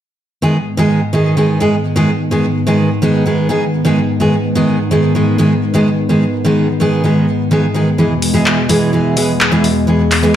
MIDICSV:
0, 0, Header, 1, 4, 480
1, 0, Start_track
1, 0, Key_signature, 5, "minor"
1, 0, Tempo, 472441
1, 435, Time_signature, 4, 2, 24, 8
1, 10526, End_track
2, 0, Start_track
2, 0, Title_t, "Steel-string acoustic guitar"
2, 0, Program_c, 0, 25
2, 428, Note_on_c, 0, 51, 69
2, 433, Note_on_c, 0, 56, 62
2, 437, Note_on_c, 0, 59, 64
2, 441, Note_on_c, 0, 68, 77
2, 568, Note_off_c, 0, 51, 0
2, 570, Note_off_c, 0, 56, 0
2, 572, Note_off_c, 0, 59, 0
2, 574, Note_off_c, 0, 68, 0
2, 786, Note_on_c, 0, 51, 94
2, 796, Note_on_c, 0, 56, 67
2, 796, Note_on_c, 0, 59, 74
2, 804, Note_on_c, 0, 68, 90
2, 1010, Note_off_c, 0, 51, 0
2, 1012, Note_off_c, 0, 56, 0
2, 1014, Note_off_c, 0, 59, 0
2, 1016, Note_off_c, 0, 68, 0
2, 1147, Note_on_c, 0, 51, 84
2, 1154, Note_on_c, 0, 56, 59
2, 1155, Note_on_c, 0, 59, 70
2, 1164, Note_on_c, 0, 68, 87
2, 1363, Note_off_c, 0, 51, 0
2, 1365, Note_off_c, 0, 56, 0
2, 1367, Note_off_c, 0, 59, 0
2, 1369, Note_off_c, 0, 68, 0
2, 1390, Note_on_c, 0, 51, 71
2, 1396, Note_on_c, 0, 59, 65
2, 1397, Note_on_c, 0, 56, 59
2, 1404, Note_on_c, 0, 68, 77
2, 1604, Note_off_c, 0, 51, 0
2, 1605, Note_off_c, 0, 56, 0
2, 1608, Note_off_c, 0, 59, 0
2, 1609, Note_off_c, 0, 68, 0
2, 1629, Note_on_c, 0, 51, 76
2, 1632, Note_on_c, 0, 56, 71
2, 1640, Note_on_c, 0, 59, 62
2, 1642, Note_on_c, 0, 68, 88
2, 1768, Note_off_c, 0, 51, 0
2, 1771, Note_off_c, 0, 56, 0
2, 1773, Note_off_c, 0, 59, 0
2, 1775, Note_off_c, 0, 68, 0
2, 1988, Note_on_c, 0, 51, 81
2, 1992, Note_on_c, 0, 56, 79
2, 2001, Note_on_c, 0, 59, 68
2, 2001, Note_on_c, 0, 68, 92
2, 2128, Note_off_c, 0, 51, 0
2, 2131, Note_off_c, 0, 56, 0
2, 2132, Note_off_c, 0, 59, 0
2, 2134, Note_off_c, 0, 68, 0
2, 2348, Note_on_c, 0, 51, 74
2, 2350, Note_on_c, 0, 56, 67
2, 2359, Note_on_c, 0, 59, 60
2, 2359, Note_on_c, 0, 68, 78
2, 2488, Note_off_c, 0, 51, 0
2, 2490, Note_off_c, 0, 56, 0
2, 2492, Note_off_c, 0, 59, 0
2, 2494, Note_off_c, 0, 68, 0
2, 2709, Note_on_c, 0, 51, 87
2, 2713, Note_on_c, 0, 56, 76
2, 2717, Note_on_c, 0, 59, 81
2, 2724, Note_on_c, 0, 68, 80
2, 2930, Note_off_c, 0, 51, 0
2, 2932, Note_off_c, 0, 56, 0
2, 2935, Note_off_c, 0, 59, 0
2, 2936, Note_off_c, 0, 68, 0
2, 3067, Note_on_c, 0, 51, 84
2, 3075, Note_on_c, 0, 56, 66
2, 3076, Note_on_c, 0, 59, 74
2, 3081, Note_on_c, 0, 68, 91
2, 3283, Note_off_c, 0, 51, 0
2, 3285, Note_off_c, 0, 56, 0
2, 3287, Note_off_c, 0, 59, 0
2, 3289, Note_off_c, 0, 68, 0
2, 3308, Note_on_c, 0, 51, 66
2, 3316, Note_on_c, 0, 56, 60
2, 3318, Note_on_c, 0, 59, 67
2, 3322, Note_on_c, 0, 68, 79
2, 3524, Note_off_c, 0, 51, 0
2, 3526, Note_off_c, 0, 56, 0
2, 3528, Note_off_c, 0, 59, 0
2, 3530, Note_off_c, 0, 68, 0
2, 3547, Note_on_c, 0, 51, 77
2, 3554, Note_on_c, 0, 56, 61
2, 3555, Note_on_c, 0, 59, 75
2, 3559, Note_on_c, 0, 68, 84
2, 3688, Note_off_c, 0, 51, 0
2, 3690, Note_off_c, 0, 56, 0
2, 3692, Note_off_c, 0, 59, 0
2, 3694, Note_off_c, 0, 68, 0
2, 3908, Note_on_c, 0, 51, 87
2, 3915, Note_on_c, 0, 59, 86
2, 3917, Note_on_c, 0, 56, 64
2, 3925, Note_on_c, 0, 68, 79
2, 4049, Note_off_c, 0, 51, 0
2, 4050, Note_off_c, 0, 56, 0
2, 4053, Note_off_c, 0, 59, 0
2, 4054, Note_off_c, 0, 68, 0
2, 4267, Note_on_c, 0, 51, 69
2, 4270, Note_on_c, 0, 56, 67
2, 4279, Note_on_c, 0, 59, 56
2, 4279, Note_on_c, 0, 68, 82
2, 4407, Note_off_c, 0, 51, 0
2, 4410, Note_off_c, 0, 56, 0
2, 4411, Note_off_c, 0, 59, 0
2, 4414, Note_off_c, 0, 68, 0
2, 4627, Note_on_c, 0, 51, 87
2, 4630, Note_on_c, 0, 56, 77
2, 4638, Note_on_c, 0, 59, 64
2, 4639, Note_on_c, 0, 68, 97
2, 4849, Note_off_c, 0, 51, 0
2, 4851, Note_off_c, 0, 56, 0
2, 4853, Note_off_c, 0, 59, 0
2, 4855, Note_off_c, 0, 68, 0
2, 4988, Note_on_c, 0, 51, 80
2, 4990, Note_on_c, 0, 56, 79
2, 5000, Note_on_c, 0, 59, 64
2, 5000, Note_on_c, 0, 68, 90
2, 5203, Note_off_c, 0, 51, 0
2, 5205, Note_off_c, 0, 56, 0
2, 5207, Note_off_c, 0, 59, 0
2, 5209, Note_off_c, 0, 68, 0
2, 5231, Note_on_c, 0, 51, 74
2, 5235, Note_on_c, 0, 56, 64
2, 5243, Note_on_c, 0, 68, 81
2, 5244, Note_on_c, 0, 59, 57
2, 5444, Note_off_c, 0, 51, 0
2, 5447, Note_off_c, 0, 56, 0
2, 5449, Note_off_c, 0, 59, 0
2, 5451, Note_off_c, 0, 68, 0
2, 5469, Note_on_c, 0, 51, 79
2, 5473, Note_on_c, 0, 56, 72
2, 5477, Note_on_c, 0, 59, 72
2, 5482, Note_on_c, 0, 68, 89
2, 5608, Note_off_c, 0, 51, 0
2, 5610, Note_off_c, 0, 56, 0
2, 5613, Note_off_c, 0, 59, 0
2, 5615, Note_off_c, 0, 68, 0
2, 5829, Note_on_c, 0, 51, 81
2, 5836, Note_on_c, 0, 59, 84
2, 5839, Note_on_c, 0, 56, 75
2, 5846, Note_on_c, 0, 68, 85
2, 5969, Note_off_c, 0, 51, 0
2, 5971, Note_off_c, 0, 56, 0
2, 5973, Note_off_c, 0, 59, 0
2, 5975, Note_off_c, 0, 68, 0
2, 6189, Note_on_c, 0, 51, 71
2, 6193, Note_on_c, 0, 56, 65
2, 6201, Note_on_c, 0, 59, 57
2, 6202, Note_on_c, 0, 68, 80
2, 6328, Note_off_c, 0, 51, 0
2, 6331, Note_off_c, 0, 56, 0
2, 6332, Note_off_c, 0, 59, 0
2, 6335, Note_off_c, 0, 68, 0
2, 6549, Note_on_c, 0, 51, 86
2, 6554, Note_on_c, 0, 56, 76
2, 6558, Note_on_c, 0, 59, 74
2, 6566, Note_on_c, 0, 68, 84
2, 6770, Note_off_c, 0, 51, 0
2, 6772, Note_off_c, 0, 56, 0
2, 6775, Note_off_c, 0, 59, 0
2, 6777, Note_off_c, 0, 68, 0
2, 6908, Note_on_c, 0, 51, 76
2, 6918, Note_on_c, 0, 56, 63
2, 6919, Note_on_c, 0, 59, 77
2, 6923, Note_on_c, 0, 68, 92
2, 7124, Note_off_c, 0, 51, 0
2, 7126, Note_off_c, 0, 56, 0
2, 7128, Note_off_c, 0, 59, 0
2, 7130, Note_off_c, 0, 68, 0
2, 7149, Note_on_c, 0, 51, 68
2, 7156, Note_on_c, 0, 56, 55
2, 7156, Note_on_c, 0, 59, 64
2, 7165, Note_on_c, 0, 68, 70
2, 7364, Note_off_c, 0, 51, 0
2, 7366, Note_off_c, 0, 56, 0
2, 7368, Note_off_c, 0, 59, 0
2, 7369, Note_off_c, 0, 68, 0
2, 7629, Note_on_c, 0, 51, 86
2, 7637, Note_on_c, 0, 59, 72
2, 7638, Note_on_c, 0, 56, 74
2, 7645, Note_on_c, 0, 68, 90
2, 7769, Note_off_c, 0, 51, 0
2, 7771, Note_off_c, 0, 56, 0
2, 7773, Note_off_c, 0, 59, 0
2, 7775, Note_off_c, 0, 68, 0
2, 7868, Note_on_c, 0, 51, 85
2, 7876, Note_on_c, 0, 59, 78
2, 7878, Note_on_c, 0, 56, 62
2, 7884, Note_on_c, 0, 68, 82
2, 8009, Note_off_c, 0, 51, 0
2, 8011, Note_off_c, 0, 56, 0
2, 8013, Note_off_c, 0, 59, 0
2, 8014, Note_off_c, 0, 68, 0
2, 8111, Note_on_c, 0, 52, 74
2, 8113, Note_on_c, 0, 56, 66
2, 8123, Note_on_c, 0, 59, 56
2, 8123, Note_on_c, 0, 68, 79
2, 8249, Note_off_c, 0, 52, 0
2, 8252, Note_off_c, 0, 56, 0
2, 8253, Note_off_c, 0, 59, 0
2, 8256, Note_off_c, 0, 68, 0
2, 8470, Note_on_c, 0, 52, 88
2, 8472, Note_on_c, 0, 56, 77
2, 8480, Note_on_c, 0, 59, 67
2, 8481, Note_on_c, 0, 68, 95
2, 8690, Note_off_c, 0, 52, 0
2, 8693, Note_off_c, 0, 56, 0
2, 8694, Note_off_c, 0, 59, 0
2, 8696, Note_off_c, 0, 68, 0
2, 8829, Note_on_c, 0, 52, 85
2, 8832, Note_on_c, 0, 56, 74
2, 8841, Note_on_c, 0, 59, 63
2, 8842, Note_on_c, 0, 68, 86
2, 9043, Note_off_c, 0, 52, 0
2, 9046, Note_off_c, 0, 56, 0
2, 9047, Note_off_c, 0, 59, 0
2, 9050, Note_off_c, 0, 68, 0
2, 9071, Note_on_c, 0, 52, 73
2, 9075, Note_on_c, 0, 56, 64
2, 9083, Note_on_c, 0, 59, 56
2, 9083, Note_on_c, 0, 68, 79
2, 9284, Note_off_c, 0, 52, 0
2, 9287, Note_off_c, 0, 56, 0
2, 9289, Note_off_c, 0, 59, 0
2, 9290, Note_off_c, 0, 68, 0
2, 9310, Note_on_c, 0, 52, 78
2, 9317, Note_on_c, 0, 59, 75
2, 9319, Note_on_c, 0, 56, 67
2, 9325, Note_on_c, 0, 68, 70
2, 9449, Note_off_c, 0, 52, 0
2, 9451, Note_off_c, 0, 56, 0
2, 9453, Note_off_c, 0, 59, 0
2, 9455, Note_off_c, 0, 68, 0
2, 9668, Note_on_c, 0, 52, 80
2, 9676, Note_on_c, 0, 56, 66
2, 9677, Note_on_c, 0, 59, 76
2, 9681, Note_on_c, 0, 68, 88
2, 9809, Note_off_c, 0, 52, 0
2, 9810, Note_off_c, 0, 56, 0
2, 9813, Note_off_c, 0, 59, 0
2, 9815, Note_off_c, 0, 68, 0
2, 10029, Note_on_c, 0, 52, 70
2, 10037, Note_on_c, 0, 56, 54
2, 10038, Note_on_c, 0, 59, 65
2, 10045, Note_on_c, 0, 68, 63
2, 10169, Note_off_c, 0, 52, 0
2, 10171, Note_off_c, 0, 56, 0
2, 10173, Note_off_c, 0, 59, 0
2, 10175, Note_off_c, 0, 68, 0
2, 10389, Note_on_c, 0, 52, 84
2, 10394, Note_on_c, 0, 56, 81
2, 10397, Note_on_c, 0, 59, 76
2, 10406, Note_on_c, 0, 68, 86
2, 10526, Note_off_c, 0, 52, 0
2, 10526, Note_off_c, 0, 56, 0
2, 10526, Note_off_c, 0, 59, 0
2, 10526, Note_off_c, 0, 68, 0
2, 10526, End_track
3, 0, Start_track
3, 0, Title_t, "Analog synth pad"
3, 0, Program_c, 1, 89
3, 433, Note_on_c, 1, 44, 75
3, 433, Note_on_c, 1, 59, 83
3, 434, Note_on_c, 1, 51, 65
3, 8074, Note_off_c, 1, 44, 0
3, 8074, Note_off_c, 1, 51, 0
3, 8074, Note_off_c, 1, 59, 0
3, 8115, Note_on_c, 1, 47, 69
3, 8115, Note_on_c, 1, 56, 81
3, 8116, Note_on_c, 1, 40, 78
3, 10526, Note_off_c, 1, 40, 0
3, 10526, Note_off_c, 1, 47, 0
3, 10526, Note_off_c, 1, 56, 0
3, 10526, End_track
4, 0, Start_track
4, 0, Title_t, "Drums"
4, 8355, Note_on_c, 9, 46, 98
4, 8456, Note_off_c, 9, 46, 0
4, 8595, Note_on_c, 9, 39, 103
4, 8697, Note_off_c, 9, 39, 0
4, 8834, Note_on_c, 9, 46, 93
4, 8936, Note_off_c, 9, 46, 0
4, 9315, Note_on_c, 9, 46, 96
4, 9417, Note_off_c, 9, 46, 0
4, 9556, Note_on_c, 9, 39, 104
4, 9658, Note_off_c, 9, 39, 0
4, 9795, Note_on_c, 9, 46, 89
4, 9897, Note_off_c, 9, 46, 0
4, 10276, Note_on_c, 9, 46, 95
4, 10277, Note_on_c, 9, 39, 54
4, 10377, Note_off_c, 9, 46, 0
4, 10378, Note_off_c, 9, 39, 0
4, 10526, End_track
0, 0, End_of_file